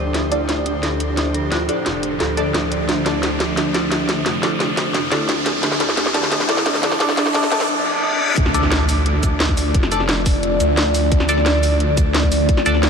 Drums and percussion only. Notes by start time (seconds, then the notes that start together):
0.14 snare, closed hi-hat
0.32 closed hi-hat
0.49 snare, closed hi-hat
0.66 closed hi-hat
0.83 snare, closed hi-hat
1.00 closed hi-hat
1.17 snare, closed hi-hat
1.34 closed hi-hat
1.52 snare, closed hi-hat
1.69 closed hi-hat
1.86 snare, closed hi-hat
2.03 closed hi-hat
2.20 snare, closed hi-hat
2.37 closed hi-hat
2.54 snare, closed hi-hat
2.72 closed hi-hat
2.89 snare, closed hi-hat
3.06 snare, closed hi-hat
3.23 snare, closed hi-hat
3.40 snare, closed hi-hat
3.57 snare, closed hi-hat
3.74 snare, closed hi-hat
3.92 snare, closed hi-hat
4.09 snare, closed hi-hat
4.26 snare, closed hi-hat
4.43 snare, closed hi-hat
4.60 snare, closed hi-hat
4.77 snare, closed hi-hat
4.94 snare, closed hi-hat
5.12 snare, closed hi-hat
5.29 snare, closed hi-hat
5.46 snare, closed hi-hat
5.63 snare, closed hi-hat
5.72 snare
5.80 snare, closed hi-hat
5.89 snare
5.97 snare, closed hi-hat
6.06 snare
6.14 snare, closed hi-hat
6.23 snare
6.32 snare, closed hi-hat
6.40 snare
6.49 snare, closed hi-hat
6.57 snare
6.66 snare, closed hi-hat
6.74 snare
6.83 snare, closed hi-hat
6.92 snare
7.00 snare, closed hi-hat
7.09 snare
7.17 snare, closed hi-hat
7.26 snare
7.34 snare, closed hi-hat
7.43 snare
7.52 snare, closed hi-hat
7.60 snare
8.37 kick, closed hi-hat
8.46 snare
8.54 closed hi-hat, shaker
8.63 snare
8.72 snare, closed hi-hat
8.89 open hi-hat, shaker
9.06 closed hi-hat
9.23 kick, closed hi-hat, shaker
9.40 snare, closed hi-hat
9.49 kick
9.57 open hi-hat, shaker
9.74 kick, closed hi-hat
9.83 snare
9.92 closed hi-hat, shaker
10.00 snare
10.09 snare, closed hi-hat
10.26 kick, open hi-hat, shaker
10.43 closed hi-hat
10.60 closed hi-hat, shaker
10.77 snare, closed hi-hat
10.95 open hi-hat, shaker
11.12 kick, closed hi-hat
11.20 snare
11.29 closed hi-hat, shaker
11.37 snare
11.46 snare, closed hi-hat
11.63 open hi-hat, shaker
11.80 closed hi-hat
11.97 kick, closed hi-hat, shaker
12.14 snare, closed hi-hat
12.23 kick
12.32 open hi-hat, shaker
12.49 kick, closed hi-hat
12.57 snare
12.66 closed hi-hat, shaker
12.74 snare
12.83 snare, closed hi-hat